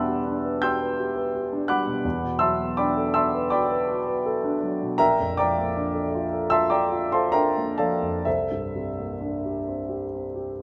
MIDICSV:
0, 0, Header, 1, 2, 480
1, 0, Start_track
1, 0, Tempo, 721154
1, 1360, Time_signature, 4, 2, 24, 8
1, 2817, Tempo, 762389
1, 4257, Tempo, 819672
1, 4737, Tempo, 924499
1, 6440, End_track
2, 0, Start_track
2, 0, Title_t, "Grand piano"
2, 0, Program_c, 0, 0
2, 0, Control_c, 0, 64, 127
2, 0, Note_on_c, 0, 40, 43
2, 0, Note_on_c, 0, 47, 31
2, 0, Note_on_c, 0, 55, 32
2, 0, Note_on_c, 0, 59, 33
2, 0, Note_on_c, 0, 62, 36
2, 0, Note_on_c, 0, 74, 57
2, 0, Note_on_c, 0, 76, 41
2, 0, Note_on_c, 0, 78, 52
2, 0, Note_on_c, 0, 79, 58
2, 0, Note_on_c, 0, 81, 45
2, 0, Note_on_c, 0, 83, 55
2, 0, Note_on_c, 0, 84, 38
2, 0, Note_on_c, 0, 86, 50
2, 0, Note_on_c, 0, 88, 57
2, 0, Note_on_c, 0, 90, 72
2, 55, Note_on_c, 0, 67, 30
2, 129, Note_off_c, 0, 62, 0
2, 178, Note_on_c, 0, 62, 38
2, 249, Note_off_c, 0, 67, 0
2, 302, Note_on_c, 0, 71, 37
2, 371, Note_off_c, 0, 62, 0
2, 391, Note_off_c, 0, 76, 0
2, 391, Note_off_c, 0, 81, 0
2, 391, Note_off_c, 0, 84, 0
2, 408, Note_off_c, 0, 88, 0
2, 410, Note_on_c, 0, 91, 84
2, 417, Note_off_c, 0, 79, 0
2, 417, Note_on_c, 0, 79, 64
2, 418, Note_on_c, 0, 88, 56
2, 419, Note_on_c, 0, 67, 38
2, 419, Note_on_c, 0, 84, 58
2, 493, Note_off_c, 0, 71, 0
2, 545, Note_on_c, 0, 71, 35
2, 611, Note_off_c, 0, 67, 0
2, 664, Note_on_c, 0, 67, 44
2, 732, Note_off_c, 0, 71, 0
2, 772, Note_on_c, 0, 71, 40
2, 849, Note_off_c, 0, 67, 0
2, 899, Note_on_c, 0, 67, 40
2, 961, Note_off_c, 0, 71, 0
2, 1015, Note_on_c, 0, 62, 35
2, 1083, Note_off_c, 0, 67, 0
2, 1099, Note_off_c, 0, 79, 0
2, 1099, Note_off_c, 0, 88, 0
2, 1100, Note_off_c, 0, 84, 0
2, 1120, Note_off_c, 0, 90, 0
2, 1120, Note_on_c, 0, 90, 78
2, 1122, Note_off_c, 0, 91, 0
2, 1125, Note_off_c, 0, 83, 0
2, 1125, Note_on_c, 0, 83, 56
2, 1128, Note_off_c, 0, 78, 0
2, 1128, Note_off_c, 0, 86, 0
2, 1128, Note_on_c, 0, 78, 58
2, 1128, Note_on_c, 0, 86, 57
2, 1133, Note_off_c, 0, 55, 0
2, 1133, Note_on_c, 0, 55, 36
2, 1199, Note_off_c, 0, 62, 0
2, 1244, Note_off_c, 0, 47, 0
2, 1244, Note_on_c, 0, 47, 37
2, 1317, Note_off_c, 0, 55, 0
2, 1337, Note_off_c, 0, 40, 0
2, 1361, Note_off_c, 0, 47, 0
2, 1361, Note_on_c, 0, 40, 47
2, 1372, Control_c, 0, 64, 0
2, 1374, Note_off_c, 0, 59, 0
2, 1374, Note_off_c, 0, 74, 0
2, 1484, Control_c, 0, 64, 127
2, 1484, Note_on_c, 0, 47, 35
2, 1572, Note_off_c, 0, 83, 0
2, 1573, Note_off_c, 0, 78, 0
2, 1573, Note_off_c, 0, 86, 0
2, 1590, Note_on_c, 0, 88, 78
2, 1596, Note_off_c, 0, 90, 0
2, 1596, Note_on_c, 0, 81, 53
2, 1596, Note_on_c, 0, 84, 58
2, 1599, Note_on_c, 0, 76, 54
2, 1601, Note_on_c, 0, 54, 40
2, 1675, Note_off_c, 0, 47, 0
2, 1727, Note_on_c, 0, 59, 34
2, 1797, Note_off_c, 0, 54, 0
2, 1826, Note_off_c, 0, 81, 0
2, 1826, Note_off_c, 0, 84, 0
2, 1828, Note_off_c, 0, 76, 0
2, 1841, Note_off_c, 0, 88, 0
2, 1845, Note_on_c, 0, 86, 72
2, 1848, Note_on_c, 0, 83, 54
2, 1851, Note_on_c, 0, 74, 52
2, 1853, Note_on_c, 0, 79, 49
2, 1856, Note_on_c, 0, 62, 39
2, 1923, Note_off_c, 0, 59, 0
2, 1977, Note_on_c, 0, 69, 37
2, 2050, Note_off_c, 0, 62, 0
2, 2079, Note_off_c, 0, 83, 0
2, 2080, Note_off_c, 0, 74, 0
2, 2081, Note_off_c, 0, 79, 0
2, 2088, Note_on_c, 0, 88, 79
2, 2093, Note_on_c, 0, 81, 59
2, 2094, Note_off_c, 0, 86, 0
2, 2096, Note_on_c, 0, 76, 58
2, 2096, Note_on_c, 0, 84, 57
2, 2100, Note_on_c, 0, 66, 42
2, 2173, Note_off_c, 0, 69, 0
2, 2224, Note_on_c, 0, 71, 41
2, 2294, Note_off_c, 0, 66, 0
2, 2321, Note_off_c, 0, 81, 0
2, 2322, Note_off_c, 0, 84, 0
2, 2323, Note_off_c, 0, 76, 0
2, 2332, Note_on_c, 0, 86, 73
2, 2336, Note_off_c, 0, 88, 0
2, 2337, Note_on_c, 0, 74, 60
2, 2341, Note_on_c, 0, 79, 63
2, 2341, Note_on_c, 0, 83, 57
2, 2345, Note_on_c, 0, 66, 44
2, 2413, Note_off_c, 0, 71, 0
2, 2474, Note_on_c, 0, 71, 41
2, 2532, Note_off_c, 0, 66, 0
2, 2593, Note_on_c, 0, 66, 43
2, 2655, Note_off_c, 0, 71, 0
2, 2709, Note_on_c, 0, 71, 41
2, 2776, Note_off_c, 0, 66, 0
2, 2834, Note_on_c, 0, 69, 46
2, 2894, Note_off_c, 0, 71, 0
2, 2947, Note_on_c, 0, 62, 40
2, 3015, Note_off_c, 0, 69, 0
2, 3028, Note_off_c, 0, 74, 0
2, 3030, Note_off_c, 0, 79, 0
2, 3030, Note_off_c, 0, 83, 0
2, 3051, Note_off_c, 0, 86, 0
2, 3069, Note_on_c, 0, 54, 39
2, 3134, Note_off_c, 0, 62, 0
2, 3187, Note_on_c, 0, 47, 36
2, 3256, Note_off_c, 0, 54, 0
2, 3273, Note_off_c, 0, 40, 0
2, 3288, Note_on_c, 0, 82, 87
2, 3292, Note_on_c, 0, 70, 66
2, 3293, Note_on_c, 0, 79, 56
2, 3295, Note_on_c, 0, 76, 65
2, 3299, Note_on_c, 0, 34, 46
2, 3303, Note_off_c, 0, 47, 0
2, 3309, Control_c, 0, 64, 0
2, 3395, Control_c, 0, 64, 127
2, 3425, Note_on_c, 0, 41, 37
2, 3519, Note_off_c, 0, 70, 0
2, 3520, Note_off_c, 0, 79, 0
2, 3521, Note_off_c, 0, 76, 0
2, 3534, Note_off_c, 0, 82, 0
2, 3536, Note_on_c, 0, 86, 74
2, 3542, Note_on_c, 0, 74, 65
2, 3544, Note_on_c, 0, 79, 58
2, 3546, Note_on_c, 0, 82, 57
2, 3548, Note_on_c, 0, 53, 37
2, 3614, Note_off_c, 0, 41, 0
2, 3663, Note_on_c, 0, 58, 35
2, 3734, Note_off_c, 0, 53, 0
2, 3779, Note_on_c, 0, 62, 32
2, 3849, Note_off_c, 0, 58, 0
2, 3892, Note_on_c, 0, 69, 37
2, 3966, Note_off_c, 0, 62, 0
2, 4023, Note_on_c, 0, 65, 38
2, 4084, Note_off_c, 0, 69, 0
2, 4134, Note_on_c, 0, 69, 39
2, 4212, Note_off_c, 0, 65, 0
2, 4232, Note_off_c, 0, 74, 0
2, 4233, Note_off_c, 0, 79, 0
2, 4234, Note_off_c, 0, 82, 0
2, 4245, Note_on_c, 0, 88, 88
2, 4253, Note_on_c, 0, 84, 63
2, 4254, Note_off_c, 0, 86, 0
2, 4254, Note_on_c, 0, 81, 67
2, 4255, Note_on_c, 0, 65, 42
2, 4255, Note_on_c, 0, 76, 65
2, 4326, Note_off_c, 0, 69, 0
2, 4362, Note_on_c, 0, 86, 71
2, 4363, Note_off_c, 0, 76, 0
2, 4363, Note_off_c, 0, 81, 0
2, 4363, Note_off_c, 0, 84, 0
2, 4366, Note_on_c, 0, 82, 51
2, 4367, Note_off_c, 0, 88, 0
2, 4368, Note_on_c, 0, 74, 54
2, 4369, Note_on_c, 0, 79, 57
2, 4373, Note_on_c, 0, 69, 38
2, 4442, Note_off_c, 0, 65, 0
2, 4494, Note_on_c, 0, 65, 42
2, 4563, Note_off_c, 0, 69, 0
2, 4591, Note_off_c, 0, 82, 0
2, 4593, Note_off_c, 0, 74, 0
2, 4593, Note_off_c, 0, 79, 0
2, 4607, Note_off_c, 0, 86, 0
2, 4611, Note_on_c, 0, 84, 74
2, 4616, Note_on_c, 0, 72, 52
2, 4617, Note_on_c, 0, 77, 51
2, 4620, Note_on_c, 0, 81, 54
2, 4621, Note_on_c, 0, 69, 35
2, 4688, Note_off_c, 0, 65, 0
2, 4725, Note_on_c, 0, 82, 79
2, 4730, Note_off_c, 0, 72, 0
2, 4730, Note_off_c, 0, 77, 0
2, 4732, Note_off_c, 0, 81, 0
2, 4733, Note_on_c, 0, 76, 53
2, 4734, Note_on_c, 0, 70, 54
2, 4735, Note_on_c, 0, 79, 55
2, 4736, Note_off_c, 0, 84, 0
2, 4738, Note_on_c, 0, 62, 37
2, 4808, Note_off_c, 0, 69, 0
2, 4859, Note_on_c, 0, 58, 31
2, 4921, Note_off_c, 0, 62, 0
2, 4950, Note_off_c, 0, 70, 0
2, 4950, Note_off_c, 0, 76, 0
2, 4951, Note_off_c, 0, 79, 0
2, 4963, Note_off_c, 0, 82, 0
2, 4964, Note_on_c, 0, 81, 64
2, 4969, Note_on_c, 0, 69, 54
2, 4971, Note_on_c, 0, 74, 48
2, 4971, Note_on_c, 0, 77, 50
2, 4975, Note_on_c, 0, 53, 31
2, 5044, Note_off_c, 0, 58, 0
2, 5093, Note_on_c, 0, 41, 30
2, 5166, Note_off_c, 0, 53, 0
2, 5192, Note_off_c, 0, 34, 0
2, 5195, Note_off_c, 0, 69, 0
2, 5197, Note_off_c, 0, 74, 0
2, 5197, Note_off_c, 0, 77, 0
2, 5210, Note_off_c, 0, 81, 0
2, 5211, Note_on_c, 0, 76, 62
2, 5214, Note_off_c, 0, 41, 0
2, 5217, Note_on_c, 0, 69, 44
2, 5219, Note_on_c, 0, 72, 48
2, 5221, Note_on_c, 0, 36, 38
2, 5224, Control_c, 0, 64, 0
2, 5315, Control_c, 0, 64, 127
2, 5347, Note_on_c, 0, 43, 27
2, 5472, Note_on_c, 0, 48, 27
2, 5540, Note_off_c, 0, 43, 0
2, 5593, Note_on_c, 0, 58, 27
2, 5662, Note_off_c, 0, 48, 0
2, 5707, Note_on_c, 0, 62, 30
2, 5781, Note_off_c, 0, 58, 0
2, 5835, Note_on_c, 0, 67, 29
2, 5897, Note_off_c, 0, 62, 0
2, 5952, Note_on_c, 0, 60, 31
2, 6019, Note_off_c, 0, 67, 0
2, 6061, Note_on_c, 0, 67, 31
2, 6137, Note_off_c, 0, 60, 0
2, 6191, Note_on_c, 0, 60, 33
2, 6251, Note_off_c, 0, 67, 0
2, 6302, Note_on_c, 0, 67, 32
2, 6375, Note_off_c, 0, 60, 0
2, 6440, Note_off_c, 0, 36, 0
2, 6440, Note_off_c, 0, 67, 0
2, 6440, Note_off_c, 0, 69, 0
2, 6440, Note_off_c, 0, 72, 0
2, 6440, Note_off_c, 0, 76, 0
2, 6440, End_track
0, 0, End_of_file